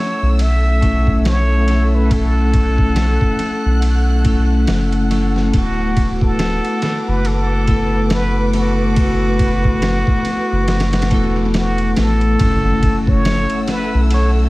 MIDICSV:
0, 0, Header, 1, 7, 480
1, 0, Start_track
1, 0, Key_signature, 3, "minor"
1, 0, Tempo, 857143
1, 1184, Time_signature, 4, 2, 24, 8
1, 8114, End_track
2, 0, Start_track
2, 0, Title_t, "Violin section"
2, 0, Program_c, 0, 48
2, 0, Note_on_c, 0, 57, 68
2, 0, Note_on_c, 0, 78, 69
2, 0, Note_on_c, 0, 88, 83
2, 1164, Note_off_c, 0, 88, 0
2, 1178, Note_on_c, 0, 90, 86
2, 3081, Note_off_c, 0, 90, 0
2, 3083, Note_off_c, 0, 57, 0
2, 3104, Note_on_c, 0, 71, 78
2, 3104, Note_on_c, 0, 86, 80
2, 6921, Note_off_c, 0, 71, 0
2, 6921, Note_off_c, 0, 78, 0
2, 6922, Note_off_c, 0, 86, 0
2, 6941, Note_on_c, 0, 88, 86
2, 6942, Note_on_c, 0, 78, 68
2, 6945, Note_on_c, 0, 57, 75
2, 8114, Note_off_c, 0, 57, 0
2, 8114, Note_off_c, 0, 78, 0
2, 8114, Note_off_c, 0, 88, 0
2, 8114, End_track
3, 0, Start_track
3, 0, Title_t, "Muted trumpet"
3, 0, Program_c, 1, 59
3, 0, Note_on_c, 1, 73, 101
3, 232, Note_on_c, 1, 76, 102
3, 241, Note_off_c, 1, 73, 0
3, 708, Note_off_c, 1, 76, 0
3, 716, Note_on_c, 1, 73, 105
3, 1093, Note_on_c, 1, 71, 86
3, 1102, Note_off_c, 1, 73, 0
3, 1187, Note_on_c, 1, 69, 96
3, 1196, Note_off_c, 1, 71, 0
3, 2625, Note_off_c, 1, 69, 0
3, 3110, Note_on_c, 1, 66, 95
3, 3464, Note_off_c, 1, 66, 0
3, 3490, Note_on_c, 1, 69, 106
3, 3969, Note_on_c, 1, 71, 96
3, 3977, Note_off_c, 1, 69, 0
3, 4069, Note_on_c, 1, 69, 106
3, 4077, Note_off_c, 1, 71, 0
3, 4554, Note_on_c, 1, 71, 111
3, 4563, Note_off_c, 1, 69, 0
3, 4789, Note_off_c, 1, 71, 0
3, 4792, Note_on_c, 1, 66, 100
3, 6445, Note_off_c, 1, 66, 0
3, 6472, Note_on_c, 1, 66, 99
3, 6718, Note_on_c, 1, 69, 113
3, 6726, Note_off_c, 1, 66, 0
3, 7327, Note_on_c, 1, 73, 113
3, 7335, Note_off_c, 1, 69, 0
3, 7679, Note_on_c, 1, 71, 104
3, 7687, Note_off_c, 1, 73, 0
3, 7848, Note_off_c, 1, 71, 0
3, 7918, Note_on_c, 1, 73, 105
3, 8008, Note_off_c, 1, 73, 0
3, 8114, End_track
4, 0, Start_track
4, 0, Title_t, "Vibraphone"
4, 0, Program_c, 2, 11
4, 0, Control_c, 2, 64, 127
4, 0, Note_on_c, 2, 57, 78
4, 0, Note_on_c, 2, 61, 74
4, 0, Note_on_c, 2, 64, 76
4, 0, Note_on_c, 2, 69, 86
4, 425, Note_off_c, 2, 57, 0
4, 434, Note_off_c, 2, 61, 0
4, 443, Note_off_c, 2, 64, 0
4, 451, Note_on_c, 2, 57, 89
4, 452, Note_off_c, 2, 69, 0
4, 460, Note_on_c, 2, 61, 79
4, 468, Note_on_c, 2, 64, 79
4, 478, Note_on_c, 2, 69, 93
4, 913, Note_off_c, 2, 57, 0
4, 918, Note_off_c, 2, 61, 0
4, 922, Note_off_c, 2, 64, 0
4, 927, Note_off_c, 2, 69, 0
4, 930, Note_on_c, 2, 57, 81
4, 940, Note_on_c, 2, 61, 78
4, 950, Note_on_c, 2, 64, 79
4, 959, Note_on_c, 2, 69, 94
4, 1146, Note_off_c, 2, 57, 0
4, 1153, Note_on_c, 2, 57, 79
4, 1158, Note_off_c, 2, 61, 0
4, 1163, Note_off_c, 2, 64, 0
4, 1167, Note_off_c, 2, 69, 0
4, 1172, Note_on_c, 2, 61, 76
4, 1191, Note_on_c, 2, 64, 73
4, 1208, Note_on_c, 2, 69, 90
4, 2344, Note_off_c, 2, 57, 0
4, 2354, Note_off_c, 2, 61, 0
4, 2363, Note_off_c, 2, 64, 0
4, 2370, Note_on_c, 2, 57, 90
4, 2372, Note_off_c, 2, 69, 0
4, 2379, Note_on_c, 2, 61, 80
4, 2389, Note_on_c, 2, 64, 81
4, 2399, Note_on_c, 2, 69, 100
4, 2832, Note_off_c, 2, 57, 0
4, 2837, Note_off_c, 2, 61, 0
4, 2842, Note_off_c, 2, 64, 0
4, 2847, Note_off_c, 2, 69, 0
4, 2847, Note_on_c, 2, 57, 87
4, 2860, Note_on_c, 2, 61, 76
4, 2866, Note_on_c, 2, 64, 82
4, 2875, Note_on_c, 2, 69, 93
4, 3065, Note_off_c, 2, 57, 0
4, 3071, Note_on_c, 2, 57, 82
4, 3077, Note_off_c, 2, 61, 0
4, 3080, Note_off_c, 2, 64, 0
4, 3085, Note_off_c, 2, 69, 0
4, 3090, Note_on_c, 2, 59, 75
4, 3107, Note_on_c, 2, 64, 77
4, 3110, Control_c, 2, 64, 0
4, 3127, Note_on_c, 2, 66, 88
4, 3208, Control_c, 2, 64, 127
4, 4263, Note_off_c, 2, 57, 0
4, 4273, Note_off_c, 2, 59, 0
4, 4281, Note_off_c, 2, 64, 0
4, 4289, Note_on_c, 2, 57, 88
4, 4291, Note_off_c, 2, 66, 0
4, 4298, Note_on_c, 2, 59, 87
4, 4308, Note_on_c, 2, 64, 89
4, 4317, Note_on_c, 2, 69, 103
4, 4752, Note_off_c, 2, 57, 0
4, 4757, Note_off_c, 2, 59, 0
4, 4762, Note_off_c, 2, 64, 0
4, 4766, Note_off_c, 2, 69, 0
4, 4771, Note_on_c, 2, 57, 90
4, 4780, Note_on_c, 2, 59, 76
4, 4788, Note_on_c, 2, 64, 84
4, 4801, Note_on_c, 2, 69, 96
4, 4993, Note_off_c, 2, 57, 0
4, 4997, Note_off_c, 2, 59, 0
4, 5002, Note_off_c, 2, 64, 0
4, 5003, Note_on_c, 2, 57, 86
4, 5008, Note_off_c, 2, 69, 0
4, 5020, Note_on_c, 2, 59, 76
4, 5036, Note_on_c, 2, 64, 77
4, 5056, Note_on_c, 2, 66, 94
4, 6189, Note_off_c, 2, 57, 0
4, 6198, Note_off_c, 2, 59, 0
4, 6206, Note_off_c, 2, 64, 0
4, 6213, Note_on_c, 2, 57, 93
4, 6215, Note_off_c, 2, 66, 0
4, 6223, Note_on_c, 2, 59, 84
4, 6230, Note_on_c, 2, 64, 90
4, 6241, Note_on_c, 2, 69, 103
4, 6674, Note_off_c, 2, 57, 0
4, 6679, Note_off_c, 2, 59, 0
4, 6683, Note_off_c, 2, 64, 0
4, 6688, Note_off_c, 2, 69, 0
4, 6694, Note_on_c, 2, 57, 91
4, 6702, Note_on_c, 2, 59, 86
4, 6712, Note_on_c, 2, 64, 83
4, 6719, Note_on_c, 2, 69, 98
4, 6909, Note_off_c, 2, 57, 0
4, 6916, Note_on_c, 2, 57, 80
4, 6919, Note_off_c, 2, 59, 0
4, 6924, Note_off_c, 2, 64, 0
4, 6927, Note_off_c, 2, 69, 0
4, 6937, Note_on_c, 2, 61, 76
4, 6951, Control_c, 2, 64, 0
4, 6954, Note_on_c, 2, 64, 81
4, 6973, Note_on_c, 2, 69, 96
4, 7065, Control_c, 2, 64, 127
4, 8105, Note_off_c, 2, 57, 0
4, 8114, Note_off_c, 2, 61, 0
4, 8114, Note_off_c, 2, 64, 0
4, 8114, Note_off_c, 2, 69, 0
4, 8114, End_track
5, 0, Start_track
5, 0, Title_t, "Sub bass"
5, 0, Program_c, 3, 38
5, 124, Note_on_c, 3, 35, 84
5, 1777, Note_off_c, 3, 35, 0
5, 2046, Note_on_c, 3, 35, 89
5, 2606, Note_off_c, 3, 35, 0
5, 2626, Note_on_c, 3, 30, 84
5, 3085, Note_off_c, 3, 30, 0
5, 3100, Note_on_c, 3, 26, 91
5, 3694, Note_off_c, 3, 26, 0
5, 3964, Note_on_c, 3, 30, 87
5, 5617, Note_off_c, 3, 30, 0
5, 5891, Note_on_c, 3, 30, 92
5, 6221, Note_on_c, 3, 28, 95
5, 6230, Note_off_c, 3, 30, 0
5, 6683, Note_off_c, 3, 28, 0
5, 6707, Note_on_c, 3, 33, 84
5, 6921, Note_off_c, 3, 33, 0
5, 6944, Note_on_c, 3, 30, 96
5, 7536, Note_off_c, 3, 30, 0
5, 7806, Note_on_c, 3, 35, 86
5, 8114, Note_off_c, 3, 35, 0
5, 8114, End_track
6, 0, Start_track
6, 0, Title_t, "Impact"
6, 0, Program_c, 4, 103
6, 6946, Note_on_c, 4, 60, 78
6, 8114, Note_off_c, 4, 60, 0
6, 8114, End_track
7, 0, Start_track
7, 0, Title_t, "Drums"
7, 219, Note_on_c, 9, 51, 82
7, 275, Note_off_c, 9, 51, 0
7, 461, Note_on_c, 9, 36, 76
7, 463, Note_on_c, 9, 51, 54
7, 517, Note_off_c, 9, 36, 0
7, 519, Note_off_c, 9, 51, 0
7, 600, Note_on_c, 9, 36, 79
7, 656, Note_off_c, 9, 36, 0
7, 701, Note_on_c, 9, 51, 74
7, 704, Note_on_c, 9, 38, 99
7, 757, Note_off_c, 9, 51, 0
7, 760, Note_off_c, 9, 38, 0
7, 939, Note_on_c, 9, 51, 65
7, 995, Note_off_c, 9, 51, 0
7, 1181, Note_on_c, 9, 36, 99
7, 1181, Note_on_c, 9, 51, 78
7, 1237, Note_off_c, 9, 36, 0
7, 1237, Note_off_c, 9, 51, 0
7, 1420, Note_on_c, 9, 36, 84
7, 1420, Note_on_c, 9, 51, 59
7, 1476, Note_off_c, 9, 36, 0
7, 1476, Note_off_c, 9, 51, 0
7, 1558, Note_on_c, 9, 36, 81
7, 1614, Note_off_c, 9, 36, 0
7, 1657, Note_on_c, 9, 51, 79
7, 1660, Note_on_c, 9, 38, 100
7, 1713, Note_off_c, 9, 51, 0
7, 1716, Note_off_c, 9, 38, 0
7, 1798, Note_on_c, 9, 36, 85
7, 1854, Note_off_c, 9, 36, 0
7, 1898, Note_on_c, 9, 51, 61
7, 1954, Note_off_c, 9, 51, 0
7, 2140, Note_on_c, 9, 51, 81
7, 2196, Note_off_c, 9, 51, 0
7, 2378, Note_on_c, 9, 51, 61
7, 2379, Note_on_c, 9, 36, 86
7, 2434, Note_off_c, 9, 51, 0
7, 2435, Note_off_c, 9, 36, 0
7, 2617, Note_on_c, 9, 51, 77
7, 2620, Note_on_c, 9, 38, 103
7, 2673, Note_off_c, 9, 51, 0
7, 2676, Note_off_c, 9, 38, 0
7, 2758, Note_on_c, 9, 51, 40
7, 2814, Note_off_c, 9, 51, 0
7, 2860, Note_on_c, 9, 51, 67
7, 2916, Note_off_c, 9, 51, 0
7, 3002, Note_on_c, 9, 38, 34
7, 3058, Note_off_c, 9, 38, 0
7, 3100, Note_on_c, 9, 36, 96
7, 3100, Note_on_c, 9, 51, 80
7, 3156, Note_off_c, 9, 36, 0
7, 3156, Note_off_c, 9, 51, 0
7, 3341, Note_on_c, 9, 36, 85
7, 3341, Note_on_c, 9, 51, 59
7, 3397, Note_off_c, 9, 36, 0
7, 3397, Note_off_c, 9, 51, 0
7, 3480, Note_on_c, 9, 36, 88
7, 3536, Note_off_c, 9, 36, 0
7, 3579, Note_on_c, 9, 51, 77
7, 3582, Note_on_c, 9, 38, 100
7, 3635, Note_off_c, 9, 51, 0
7, 3638, Note_off_c, 9, 38, 0
7, 3722, Note_on_c, 9, 51, 43
7, 3778, Note_off_c, 9, 51, 0
7, 3819, Note_on_c, 9, 51, 60
7, 3822, Note_on_c, 9, 38, 53
7, 3875, Note_off_c, 9, 51, 0
7, 3878, Note_off_c, 9, 38, 0
7, 4059, Note_on_c, 9, 51, 81
7, 4115, Note_off_c, 9, 51, 0
7, 4298, Note_on_c, 9, 51, 65
7, 4300, Note_on_c, 9, 36, 87
7, 4354, Note_off_c, 9, 51, 0
7, 4356, Note_off_c, 9, 36, 0
7, 4537, Note_on_c, 9, 51, 76
7, 4540, Note_on_c, 9, 38, 103
7, 4593, Note_off_c, 9, 51, 0
7, 4596, Note_off_c, 9, 38, 0
7, 4779, Note_on_c, 9, 51, 64
7, 4835, Note_off_c, 9, 51, 0
7, 5020, Note_on_c, 9, 51, 78
7, 5021, Note_on_c, 9, 36, 99
7, 5076, Note_off_c, 9, 51, 0
7, 5077, Note_off_c, 9, 36, 0
7, 5260, Note_on_c, 9, 51, 62
7, 5261, Note_on_c, 9, 36, 82
7, 5316, Note_off_c, 9, 51, 0
7, 5317, Note_off_c, 9, 36, 0
7, 5400, Note_on_c, 9, 36, 88
7, 5456, Note_off_c, 9, 36, 0
7, 5500, Note_on_c, 9, 51, 81
7, 5503, Note_on_c, 9, 38, 105
7, 5556, Note_off_c, 9, 51, 0
7, 5559, Note_off_c, 9, 38, 0
7, 5640, Note_on_c, 9, 36, 91
7, 5696, Note_off_c, 9, 36, 0
7, 5739, Note_on_c, 9, 51, 65
7, 5795, Note_off_c, 9, 51, 0
7, 5979, Note_on_c, 9, 51, 62
7, 5982, Note_on_c, 9, 38, 77
7, 6035, Note_off_c, 9, 51, 0
7, 6038, Note_off_c, 9, 38, 0
7, 6048, Note_on_c, 9, 51, 64
7, 6051, Note_on_c, 9, 38, 85
7, 6104, Note_off_c, 9, 51, 0
7, 6107, Note_off_c, 9, 38, 0
7, 6120, Note_on_c, 9, 51, 59
7, 6123, Note_on_c, 9, 38, 85
7, 6171, Note_off_c, 9, 51, 0
7, 6171, Note_on_c, 9, 51, 61
7, 6174, Note_off_c, 9, 38, 0
7, 6174, Note_on_c, 9, 38, 89
7, 6221, Note_off_c, 9, 51, 0
7, 6221, Note_on_c, 9, 51, 66
7, 6222, Note_on_c, 9, 36, 90
7, 6230, Note_off_c, 9, 38, 0
7, 6277, Note_off_c, 9, 51, 0
7, 6278, Note_off_c, 9, 36, 0
7, 6462, Note_on_c, 9, 51, 69
7, 6465, Note_on_c, 9, 38, 97
7, 6518, Note_off_c, 9, 51, 0
7, 6521, Note_off_c, 9, 38, 0
7, 6598, Note_on_c, 9, 51, 41
7, 6654, Note_off_c, 9, 51, 0
7, 6700, Note_on_c, 9, 51, 80
7, 6703, Note_on_c, 9, 38, 96
7, 6756, Note_off_c, 9, 51, 0
7, 6759, Note_off_c, 9, 38, 0
7, 6838, Note_on_c, 9, 51, 34
7, 6894, Note_off_c, 9, 51, 0
7, 6941, Note_on_c, 9, 51, 90
7, 6943, Note_on_c, 9, 36, 105
7, 6997, Note_off_c, 9, 51, 0
7, 6999, Note_off_c, 9, 36, 0
7, 7183, Note_on_c, 9, 36, 90
7, 7183, Note_on_c, 9, 51, 59
7, 7239, Note_off_c, 9, 36, 0
7, 7239, Note_off_c, 9, 51, 0
7, 7321, Note_on_c, 9, 36, 95
7, 7377, Note_off_c, 9, 36, 0
7, 7421, Note_on_c, 9, 51, 86
7, 7424, Note_on_c, 9, 38, 107
7, 7477, Note_off_c, 9, 51, 0
7, 7480, Note_off_c, 9, 38, 0
7, 7558, Note_on_c, 9, 51, 45
7, 7614, Note_off_c, 9, 51, 0
7, 7658, Note_on_c, 9, 51, 66
7, 7661, Note_on_c, 9, 38, 52
7, 7714, Note_off_c, 9, 51, 0
7, 7717, Note_off_c, 9, 38, 0
7, 7899, Note_on_c, 9, 51, 83
7, 7955, Note_off_c, 9, 51, 0
7, 8114, End_track
0, 0, End_of_file